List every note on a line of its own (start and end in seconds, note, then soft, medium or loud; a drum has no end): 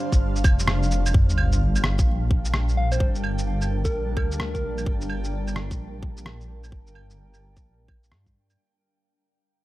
0.00 1.14 G3 medium
0.00 1.14 D4 medium
0.00 2.49 C5 medium
0.00 8.58 F5 medium
0.00 1.14 A5 medium
0.12 0.44 G1 medium
0.12 kick medium
0.12 shaker medium
0.36 shaker soft
0.44 1.13 F1 medium
0.44 kick loud
0.44 cabasa medium
0.44 claves medium
0.59 shaker medium
0.67 cross-stick loud
0.83 shaker soft
0.91 cabasa medium
1.06 claves soft
1.06 shaker medium
1.14 2.01 G1 loud
1.14 8.58 G3 medium
1.14 8.60 G5 medium
1.14 kick loud
1.14 sub drop medium
1.28 8.59 A5 medium
1.28 shaker soft
1.38 claves medium
1.50 8.59 D4 medium
1.50 shaker medium
1.57 8.59 A#4 medium
1.76 claves soft
1.76 shaker soft
1.84 cross-stick loud
1.99 2.99 A#1 medium
1.99 kick loud
1.99 shaker medium
2.31 kick loud
2.45 shaker medium
2.54 cross-stick loud
2.69 shaker soft
2.77 2.89 F5 medium
2.92 2.97 C5 medium
2.92 claves soft
2.92 shaker medium
3.00 3.87 G1 loud
3.00 3.09 C5 medium
3.00 kick loud
3.15 shaker soft
3.24 claves medium
3.39 shaker medium
3.62 claves soft
3.62 shaker soft
3.85 4.16 A#1 medium
3.85 4.09 A#4 medium
3.85 kick loud
3.85 shaker medium
4.16 4.65 D2 medium
4.16 4.51 A#4 medium
4.16 kick loud
4.16 claves medium
4.32 shaker medium
4.40 cross-stick loud
4.54 4.86 A#4 medium
4.54 kick medium
4.54 shaker soft
4.64 4.85 A#1 medium
4.78 claves soft
4.78 shaker medium
4.86 5.73 G1 medium
4.86 kick loud
5.01 shaker soft
5.09 claves medium
5.24 shaker medium
5.47 claves soft
5.47 shaker soft
5.56 cross-stick loud
5.71 6.71 A#1 medium
5.71 kick medium
5.71 shaker soft
6.03 kick loud
6.17 shaker medium
6.26 cross-stick loud
6.41 shaker soft
6.64 claves soft
6.64 shaker medium
6.72 7.58 G1 loud
6.72 kick loud
6.87 shaker soft
6.95 claves medium
7.10 shaker soft
7.34 claves soft
7.34 shaker soft
7.57 8.13 A#1 medium
7.57 kick medium
7.57 shaker soft
7.88 kick loud
7.88 claves medium
8.03 shaker soft
8.11 8.57 G2 medium
8.11 cross-stick loud
8.26 kick medium
8.26 shaker soft
8.50 claves soft
8.50 shaker soft